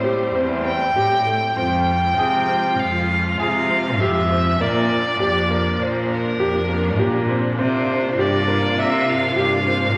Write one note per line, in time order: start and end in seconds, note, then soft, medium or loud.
0.00 0.29 A2 medium
0.00 1.55 G3 medium
0.00 1.55 A3 medium
0.00 1.55 C4 medium
0.00 0.20 G4 medium
0.00 0.65 C5 medium
0.35 0.90 E2 medium
0.35 0.66 C4 medium
0.65 1.54 G5 medium
0.96 1.24 A2 medium
0.96 1.12 G4 medium
1.27 1.42 A3 medium
1.57 2.12 F2 medium
1.57 7.55 F3 medium
1.57 4.57 G#3 medium
1.57 1.88 C4 medium
1.57 4.57 F4 medium
1.57 2.80 G5 medium
2.18 2.73 C3 medium
2.18 2.34 G#4 medium
2.48 2.79 C4 medium
2.79 3.34 F2 medium
2.79 3.38 F5 medium
3.39 4.01 C3 medium
3.39 3.55 G#4 medium
3.39 3.94 F5 medium
3.70 3.86 C4 medium
3.94 4.01 F5 medium
4.00 4.54 F2 medium
4.00 4.16 G4 medium
4.00 4.63 E5 medium
4.31 4.46 C4 medium
4.60 5.14 A#2 medium
4.60 4.91 A#3 medium
4.60 7.56 A#3 medium
4.60 9.97 D4 medium
4.60 5.84 D5 medium
5.20 5.74 F2 medium
5.20 5.35 G4 medium
5.50 5.81 A#3 medium
5.80 6.33 A#2 medium
5.80 6.11 C5 medium
6.12 7.26 A#4 medium
6.40 7.00 F2 medium
6.40 6.55 G4 medium
6.69 6.85 A#3 medium
6.99 7.53 A#2 medium
6.99 7.14 G4 medium
7.29 7.44 C4 medium
7.59 8.12 C3 medium
7.59 9.97 C3 medium
7.59 9.97 A#3 medium
7.59 7.89 C4 medium
7.59 9.97 F4 medium
7.59 8.22 C5 medium
8.18 8.72 G2 medium
8.18 8.34 G4 medium
8.18 8.81 D5 medium
8.48 8.78 A#3 medium
8.77 9.31 C3 medium
8.77 9.11 E5 medium
9.10 9.38 F5 medium
9.36 9.97 G2 medium
9.36 9.52 G4 medium
9.36 9.97 F5 medium
9.67 9.82 C4 medium